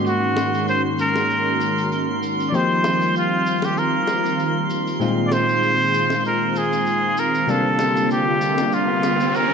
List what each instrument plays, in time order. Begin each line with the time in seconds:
Already playing: hollow-body jazz guitar G#2 A#3 C#4 D#4 F#4, analog synth pad D#3 G#3 A#3 C#4 F#4, synth texture C6
0.06 muted trumpet F#4, cabasa
0.37 high bongo, cabasa
0.54 cabasa
0.68 muted trumpet C5, cabasa
0.99 muted trumpet A#4, cabasa
1.16 high bongo, cabasa
1.30 cabasa
1.61 cabasa
1.78 cabasa
1.92 cabasa
2.23 cabasa
2.40 cabasa
2.49 analog synth pad D#3, hollow-body jazz guitar F3 A#3, muted trumpet D5
2.53 analog synth pad G3 C4 F4, hollow-body jazz guitar C4 D#4 G4, muted trumpet C5, cabasa
2.84 high bongo, cabasa
3.02 cabasa
3.16 muted trumpet F4, cabasa
3.47 cabasa
3.62 muted trumpet G4, high bongo, cabasa
3.77 muted trumpet A#4, cabasa
4.07 high bongo, cabasa
4.25 cabasa
4.39 cabasa
4.70 cabasa
4.87 cabasa
4.99 hollow-body jazz guitar A#2 G#3 C4 D#4 F4, analog synth pad G#3 C4 F4, cabasa
5.27 muted trumpet D5
5.32 muted trumpet C5, high bongo, cabasa
5.49 cabasa
5.63 cabasa
5.94 cabasa
6.10 high bongo, cabasa
6.25 muted trumpet A#4, cabasa
6.56 muted trumpet G#4, cabasa
6.73 cabasa
6.87 cabasa
7.17 muted trumpet A#4, cabasa
7.35 cabasa
7.47 hollow-body jazz guitar C3 G3 A#3 D4 F4, analog synth pad D3 G3 A#3, muted trumpet A4, riser, cabasa
7.79 high bongo, cabasa
7.97 cabasa
8.11 muted trumpet G4, cabasa
8.41 cabasa
8.58 high bongo, cabasa
8.72 muted trumpet F4, cabasa
9.03 high bongo, cabasa
9.20 cabasa
9.34 muted trumpet A#4, cabasa